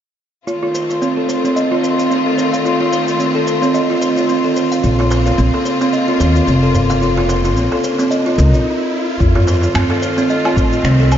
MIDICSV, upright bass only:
0, 0, Header, 1, 2, 480
1, 0, Start_track
1, 0, Tempo, 545455
1, 421, Time_signature, 4, 2, 24, 8
1, 9838, End_track
2, 0, Start_track
2, 0, Title_t, "Upright bass"
2, 0, Program_c, 0, 32
2, 4259, Note_on_c, 0, 34, 79
2, 4679, Note_off_c, 0, 34, 0
2, 4736, Note_on_c, 0, 34, 93
2, 4825, Note_off_c, 0, 34, 0
2, 5460, Note_on_c, 0, 39, 74
2, 5624, Note_off_c, 0, 39, 0
2, 5700, Note_on_c, 0, 29, 71
2, 6658, Note_off_c, 0, 29, 0
2, 6658, Note_on_c, 0, 34, 89
2, 6746, Note_off_c, 0, 34, 0
2, 7377, Note_on_c, 0, 37, 96
2, 7512, Note_off_c, 0, 37, 0
2, 7512, Note_on_c, 0, 34, 80
2, 7581, Note_off_c, 0, 34, 0
2, 8100, Note_on_c, 0, 41, 83
2, 8519, Note_off_c, 0, 41, 0
2, 8575, Note_on_c, 0, 41, 84
2, 8664, Note_off_c, 0, 41, 0
2, 9297, Note_on_c, 0, 45, 70
2, 9463, Note_off_c, 0, 45, 0
2, 9537, Note_on_c, 0, 36, 73
2, 9838, Note_off_c, 0, 36, 0
2, 9838, End_track
0, 0, End_of_file